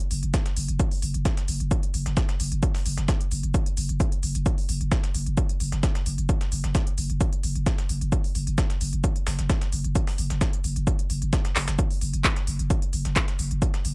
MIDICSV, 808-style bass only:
0, 0, Header, 1, 2, 480
1, 0, Start_track
1, 0, Tempo, 458015
1, 833, Time_signature, 4, 2, 24, 8
1, 14612, End_track
2, 0, Start_track
2, 0, Title_t, "808-style bass"
2, 0, Program_c, 0, 38
2, 115, Note_on_c, 0, 30, 98
2, 234, Note_off_c, 0, 30, 0
2, 240, Note_on_c, 0, 30, 80
2, 352, Note_off_c, 0, 30, 0
2, 595, Note_on_c, 0, 30, 95
2, 713, Note_off_c, 0, 30, 0
2, 720, Note_on_c, 0, 30, 81
2, 832, Note_off_c, 0, 30, 0
2, 1074, Note_on_c, 0, 30, 96
2, 1194, Note_off_c, 0, 30, 0
2, 1200, Note_on_c, 0, 30, 79
2, 1312, Note_off_c, 0, 30, 0
2, 1554, Note_on_c, 0, 30, 104
2, 1673, Note_off_c, 0, 30, 0
2, 1680, Note_on_c, 0, 30, 82
2, 1792, Note_off_c, 0, 30, 0
2, 2034, Note_on_c, 0, 30, 99
2, 2152, Note_off_c, 0, 30, 0
2, 2159, Note_on_c, 0, 30, 79
2, 2271, Note_off_c, 0, 30, 0
2, 2515, Note_on_c, 0, 30, 100
2, 2632, Note_off_c, 0, 30, 0
2, 2638, Note_on_c, 0, 30, 82
2, 2751, Note_off_c, 0, 30, 0
2, 2994, Note_on_c, 0, 30, 96
2, 3113, Note_off_c, 0, 30, 0
2, 3119, Note_on_c, 0, 30, 81
2, 3231, Note_off_c, 0, 30, 0
2, 3474, Note_on_c, 0, 30, 106
2, 3593, Note_off_c, 0, 30, 0
2, 3599, Note_on_c, 0, 30, 83
2, 3711, Note_off_c, 0, 30, 0
2, 3954, Note_on_c, 0, 30, 100
2, 4074, Note_off_c, 0, 30, 0
2, 4080, Note_on_c, 0, 30, 81
2, 4192, Note_off_c, 0, 30, 0
2, 4434, Note_on_c, 0, 30, 97
2, 4553, Note_off_c, 0, 30, 0
2, 4560, Note_on_c, 0, 30, 85
2, 4672, Note_off_c, 0, 30, 0
2, 4915, Note_on_c, 0, 30, 102
2, 5033, Note_off_c, 0, 30, 0
2, 5039, Note_on_c, 0, 30, 82
2, 5151, Note_off_c, 0, 30, 0
2, 5393, Note_on_c, 0, 30, 105
2, 5512, Note_off_c, 0, 30, 0
2, 5518, Note_on_c, 0, 30, 82
2, 5631, Note_off_c, 0, 30, 0
2, 5873, Note_on_c, 0, 30, 97
2, 5991, Note_off_c, 0, 30, 0
2, 5997, Note_on_c, 0, 30, 79
2, 6111, Note_off_c, 0, 30, 0
2, 6353, Note_on_c, 0, 30, 99
2, 6471, Note_off_c, 0, 30, 0
2, 6478, Note_on_c, 0, 30, 80
2, 6591, Note_off_c, 0, 30, 0
2, 6833, Note_on_c, 0, 30, 100
2, 6951, Note_off_c, 0, 30, 0
2, 6958, Note_on_c, 0, 30, 83
2, 7071, Note_off_c, 0, 30, 0
2, 7313, Note_on_c, 0, 30, 106
2, 7432, Note_off_c, 0, 30, 0
2, 7438, Note_on_c, 0, 30, 81
2, 7551, Note_off_c, 0, 30, 0
2, 7793, Note_on_c, 0, 30, 99
2, 7912, Note_off_c, 0, 30, 0
2, 7918, Note_on_c, 0, 30, 79
2, 8031, Note_off_c, 0, 30, 0
2, 8273, Note_on_c, 0, 30, 102
2, 8392, Note_off_c, 0, 30, 0
2, 8398, Note_on_c, 0, 30, 83
2, 8511, Note_off_c, 0, 30, 0
2, 8753, Note_on_c, 0, 30, 100
2, 8872, Note_off_c, 0, 30, 0
2, 8878, Note_on_c, 0, 30, 83
2, 8991, Note_off_c, 0, 30, 0
2, 9234, Note_on_c, 0, 30, 103
2, 9353, Note_off_c, 0, 30, 0
2, 9359, Note_on_c, 0, 30, 84
2, 9471, Note_off_c, 0, 30, 0
2, 9714, Note_on_c, 0, 30, 100
2, 9833, Note_off_c, 0, 30, 0
2, 9839, Note_on_c, 0, 30, 79
2, 9951, Note_off_c, 0, 30, 0
2, 10193, Note_on_c, 0, 30, 100
2, 10313, Note_off_c, 0, 30, 0
2, 10319, Note_on_c, 0, 30, 79
2, 10431, Note_off_c, 0, 30, 0
2, 10674, Note_on_c, 0, 30, 100
2, 10793, Note_off_c, 0, 30, 0
2, 10799, Note_on_c, 0, 30, 80
2, 10911, Note_off_c, 0, 30, 0
2, 11153, Note_on_c, 0, 30, 102
2, 11272, Note_off_c, 0, 30, 0
2, 11278, Note_on_c, 0, 30, 84
2, 11391, Note_off_c, 0, 30, 0
2, 11632, Note_on_c, 0, 30, 98
2, 11752, Note_off_c, 0, 30, 0
2, 11758, Note_on_c, 0, 30, 82
2, 11871, Note_off_c, 0, 30, 0
2, 12113, Note_on_c, 0, 30, 100
2, 12233, Note_off_c, 0, 30, 0
2, 12239, Note_on_c, 0, 30, 80
2, 12351, Note_off_c, 0, 30, 0
2, 12594, Note_on_c, 0, 30, 98
2, 12712, Note_off_c, 0, 30, 0
2, 12718, Note_on_c, 0, 30, 81
2, 12831, Note_off_c, 0, 30, 0
2, 13073, Note_on_c, 0, 30, 103
2, 13192, Note_off_c, 0, 30, 0
2, 13198, Note_on_c, 0, 30, 82
2, 13311, Note_off_c, 0, 30, 0
2, 13553, Note_on_c, 0, 30, 100
2, 13672, Note_off_c, 0, 30, 0
2, 13678, Note_on_c, 0, 30, 79
2, 13791, Note_off_c, 0, 30, 0
2, 14033, Note_on_c, 0, 30, 96
2, 14153, Note_off_c, 0, 30, 0
2, 14159, Note_on_c, 0, 30, 81
2, 14271, Note_off_c, 0, 30, 0
2, 14513, Note_on_c, 0, 30, 98
2, 14612, Note_off_c, 0, 30, 0
2, 14612, End_track
0, 0, End_of_file